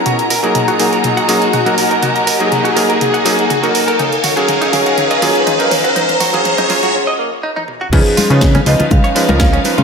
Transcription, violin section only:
0.00 3.95 A#5 medium
0.06 3.95 F#4 medium
0.06 3.95 D#5 medium
0.06 5.92 G#5 medium
3.99 6.91 D#4 medium
3.99 6.91 C#5 medium
3.99 6.92 F5 medium
5.96 6.94 A#5 medium
7.93 9.84 B3 medium
7.93 9.84 C#4 medium
7.93 9.84 D#5 medium
7.93 9.84 F5 medium

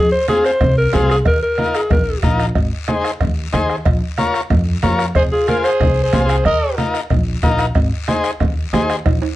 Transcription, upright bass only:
0.61 0.87 C2 medium
0.94 1.20 C2 medium
1.26 1.39 D#2 medium
1.91 2.17 A#1 medium
2.23 2.49 A#1 medium
2.56 2.69 G#1 medium
3.20 3.47 D#2 medium
3.54 3.80 D#2 medium
3.86 3.99 A#1 medium
4.50 4.77 F2 medium
4.83 5.09 F2 medium
5.15 5.28 F1 medium
5.80 6.07 C2 medium
6.13 6.39 C2 medium
6.45 6.59 D#2 medium
7.11 7.37 A#1 medium
7.43 7.69 A#1 medium
7.76 7.89 G#1 medium
8.41 8.67 D#2 medium
8.73 8.99 D#2 medium
9.06 9.19 A#1 medium

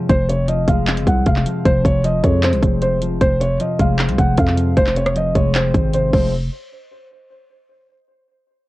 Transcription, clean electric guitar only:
0.10 1.06 F2 medium
0.29 1.26 C3 medium
0.48 1.45 F3 medium
0.68 1.66 G#3 medium
0.87 1.85 C4 loud
1.07 1.64 F2 medium
1.27 1.83 C3 medium
1.46 2.03 F3 medium
1.65 2.61 F2 loud
1.85 2.81 C3 medium
2.04 3.01 F3 medium
2.24 3.21 G#3 medium
2.44 3.21 C4 loud
2.63 3.19 F2 medium
2.82 3.21 C3 medium
3.02 3.21 F3 medium
3.21 4.18 F2 medium
3.41 4.36 C3 medium
3.60 4.56 F3 medium
3.80 4.77 G#3 medium
3.99 4.97 C4 medium
4.19 4.76 F2 medium
4.37 4.96 C3 medium
4.57 5.15 F3 medium
4.77 5.74 F2 loud
4.97 5.93 C3 medium
5.16 6.12 F3 medium
5.35 6.12 G#3 medium
5.55 6.12 C4 loud
5.75 6.14 F2 medium
5.94 6.12 C3 medium
6.13 6.31 C3 medium
6.13 6.31 F3 medium
6.13 6.31 G#3 medium
6.13 6.31 C4 medium

